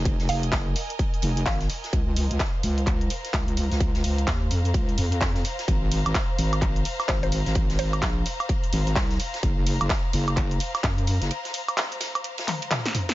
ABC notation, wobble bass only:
X:1
M:4/4
L:1/16
Q:"Swing 16ths" 1/4=128
K:Db
V:1 name="Wobble bass" clef=bass
F,,,2 F,,,2 G,,,2 z4 F,,,2 A,,,2 z2 | D,,3 D,, z2 D,,4 z2 D,,3 D,,- | D,,2 D,,2 E,,2 F,,2 D,,2 F,,4 z2 | A,,,3 A,,, z2 A,,,4 z2 A,,,3 A,,,- |
A,,,2 A,,,2 B,,,2 z4 A,,,2 C,,2 z2 | G,,,3 G,,, z2 G,,,4 z2 G,,3 G,,, | z16 |]